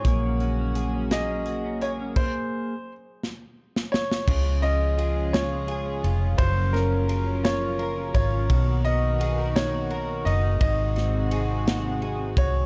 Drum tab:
CC |------------|x-----------|x-----------|------------|
RD |------------|------------|--x-x-x-x-x-|x-x-x-x-x-x-|
HH |x-x-x-x-x-x-|------------|------------|------------|
SD |------o-----|------o--ooo|------o-----|--o---o-----|
BD |o-----------|o-----------|o-----------|o---------o-|

CC |------------|------------|
RD |x-x-x-x-x-x-|x-x-x-x-x-x-|
HH |------------|------------|
SD |------o-----|--o---o-----|
BD |o-----------|o---------o-|